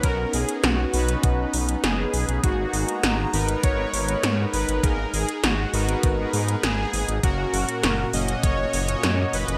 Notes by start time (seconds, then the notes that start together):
Already playing: B3 C#4 D#4
0.03 B1 B3 C#4 D#4 F#4 A#4, kick, closed hi-hat
0.33 B1 G#4, open hi-hat
0.49 closed hi-hat
0.64 B1 F#4, snare, closed hi-hat
0.93 B1 B3 C#4 D#4 B4, open hi-hat
1.09 closed hi-hat
1.23 B1, kick, closed hi-hat
1.54 B1, open hi-hat
1.69 closed hi-hat
1.84 F#1 G#4, snare, closed hi-hat
2.14 B1, open hi-hat
2.28 B1, closed hi-hat
2.43 G#1 G#3 A#3 B3 D#4 F#4 G#4 A#5, kick, closed hi-hat
2.73 G#1, open hi-hat
2.89 closed hi-hat
3.03 G#1, snare, closed hi-hat
3.33 G#1 B3 D#4 A#4 B4, open hi-hat
3.49 closed hi-hat
3.63 G#1 C#5, kick, closed hi-hat
3.94 G#1, open hi-hat
4.08 closed hi-hat
4.23 G#2 C#5, snare, closed hi-hat
4.53 G#1 B4, open hi-hat
4.69 G#1, closed hi-hat
4.83 G#1 A#3 B3 D#4 G#4 A#4, kick, closed hi-hat
5.13 G#1 G#4, open hi-hat
5.29 closed hi-hat
5.43 G#1 F#4, snare, closed hi-hat
5.73 G#1 B3 D#4 A#4 B4, open hi-hat
5.89 closed hi-hat
6.03 G#1, kick, closed hi-hat
6.33 G#2, open hi-hat
6.49 closed hi-hat
6.63 G#1 G#4, snare, closed hi-hat
6.78 A#3 B3 D#4 G#4
6.93 G#1 G#4, open hi-hat
7.08 G#1, closed hi-hat
7.23 F#1 A#2 A#3 C#4 F#4 A#4, kick, closed hi-hat
7.53 F#1, open hi-hat
7.69 closed hi-hat
7.83 F#1, snare, closed hi-hat
8.13 F#1 A#3 C#4 F#4 D#5, open hi-hat
8.28 closed hi-hat
8.43 F#1 C#5, kick, closed hi-hat
8.73 F#1, open hi-hat
8.88 closed hi-hat
9.03 F#2, snare, closed hi-hat
9.33 F#1 B4, open hi-hat
9.48 F#1, closed hi-hat